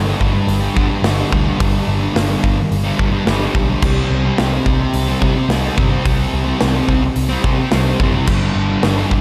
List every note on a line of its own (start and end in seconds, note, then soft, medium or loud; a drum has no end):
0.00 0.12 G1 medium
0.00 0.74 G2 loud
0.05 0.32 D3 medium
0.05 0.32 G3 medium
0.21 0.40 G1 medium
0.21 kick medium
0.33 muted distorted electric guitar stroke medium
0.47 0.67 G1 loud
0.47 open hi-hat medium
0.60 0.75 D3 medium
0.60 0.77 G3 medium
0.75 1.01 G2 medium
0.75 0.95 G2 medium
0.75 0.89 D3 medium
0.75 0.89 G3 medium
0.75 kick medium
0.89 muted distorted electric guitar stroke soft
1.02 1.22 G1 medium
1.02 1.28 G2 medium
1.02 1.30 D3 loud
1.02 1.32 G3 loud
1.02 snare loud
1.02 open hi-hat medium
1.30 1.51 D2 medium
1.30 1.56 G2 medium
1.30 1.46 D3 medium
1.30 1.45 G3 medium
1.30 kick medium
1.45 1.58 D3 medium
1.45 1.60 G3 medium
1.57 1.79 G1 medium
1.57 2.11 G2 medium
1.57 2.01 D3 loud
1.57 1.99 G3 loud
1.57 kick loud
1.57 open hi-hat medium
1.88 2.07 G1 loud
2.00 2.12 D3 medium
2.00 2.14 G3 medium
2.12 2.35 G1 medium
2.12 2.56 G2 loud
2.12 2.28 D3 loud
2.12 2.26 G3 loud
2.16 snare loud
2.16 open hi-hat medium
2.27 2.56 D3 medium
2.27 2.56 G3 medium
2.44 2.63 G1 medium
2.44 kick medium
2.56 muted distorted electric guitar stroke medium
2.71 2.90 G1 medium
2.71 open hi-hat medium
2.83 2.97 D3 medium
2.83 2.99 G3 medium
2.97 3.24 G2 medium
2.97 3.19 G2 medium
2.97 3.11 D3 medium
2.97 3.11 G3 medium
2.97 kick medium
3.11 muted distorted electric guitar stroke medium
3.26 3.46 G1 medium
3.26 3.54 G2 medium
3.26 3.56 D3 medium
3.26 3.58 G3 loud
3.26 snare loud
3.26 open hi-hat medium
3.55 3.74 B1 loud
3.55 3.81 G2 medium
3.55 3.71 D3 medium
3.55 3.69 G3 loud
3.55 kick medium
3.70 3.82 D3 medium
3.70 3.83 G3 medium
3.82 4.02 C2 medium
3.82 4.38 C3 medium
3.82 4.27 G3 medium
3.82 4.25 C4 medium
3.82 kick loud
3.82 crash medium
4.10 4.29 C2 loud
4.25 4.39 G3 medium
4.25 4.40 C4 medium
4.38 4.58 C2 medium
4.38 5.20 C3 loud
4.38 4.56 G3 loud
4.38 4.52 C4 loud
4.38 snare loud
4.38 open hi-hat medium
4.53 4.80 G3 medium
4.53 4.79 C4 medium
4.66 4.85 C2 medium
4.66 kick medium
4.80 muted distorted electric guitar stroke soft
4.94 5.13 C2 loud
4.94 open hi-hat medium
5.08 5.22 G3 medium
5.08 5.22 C4 medium
5.20 5.48 C3 medium
5.20 5.41 C3 medium
5.20 5.37 G3 medium
5.20 5.35 C4 medium
5.20 kick medium
5.36 muted distorted electric guitar stroke medium
5.49 5.68 C2 medium
5.49 5.75 C3 medium
5.49 5.77 G3 loud
5.49 5.77 C4 loud
5.49 snare loud
5.49 open hi-hat medium
5.76 5.96 G1 medium
5.76 6.02 C3 medium
5.76 5.92 G3 medium
5.76 5.89 C4 medium
5.76 kick medium
5.90 6.04 G3 medium
5.90 6.05 C4 medium
6.04 6.25 C2 medium
6.04 6.57 C3 medium
6.04 6.46 G3 loud
6.04 6.43 C4 medium
6.04 kick loud
6.04 open hi-hat medium
6.34 6.52 C2 loud
6.45 6.59 G3 medium
6.45 6.60 C4 medium
6.58 6.80 C2 medium
6.58 7.01 C3 loud
6.58 6.76 G3 loud
6.58 6.72 C4 loud
6.58 snare loud
6.58 open hi-hat medium
6.74 7.03 G3 medium
6.74 7.01 C4 medium
6.89 7.08 C2 medium
6.89 kick medium
7.02 muted distorted electric guitar stroke medium
7.16 7.35 C2 medium
7.16 open hi-hat medium
7.29 7.43 G3 medium
7.29 7.44 C4 medium
7.42 7.69 C3 medium
7.42 7.64 C3 medium
7.42 7.59 G3 medium
7.42 7.58 C4 medium
7.42 kick medium
7.59 muted distorted electric guitar stroke medium
7.71 7.92 C2 medium
7.71 7.99 C3 loud
7.71 8.02 G3 medium
7.71 8.02 C4 loud
7.71 snare loud
7.71 open hi-hat medium
8.00 8.19 F#1 medium
8.00 8.27 C3 medium
8.00 8.16 G3 medium
8.00 8.13 C4 medium
8.00 kick medium
8.14 8.30 G3 medium
8.14 8.26 C4 medium
8.27 8.47 G1 medium
8.27 8.82 G2 medium
8.27 8.70 D3 medium
8.27 8.69 G3 loud
8.27 kick loud
8.27 crash medium
8.55 8.75 G1 medium
8.69 8.82 D3 medium
8.69 8.85 G3 medium
8.83 9.03 G1 medium
8.83 9.21 G2 medium
8.83 8.99 D3 loud
8.83 8.97 G3 loud
8.83 snare loud
8.83 open hi-hat medium
8.97 9.21 D3 medium
8.97 9.21 G3 medium
9.11 9.21 G1 medium
9.11 kick medium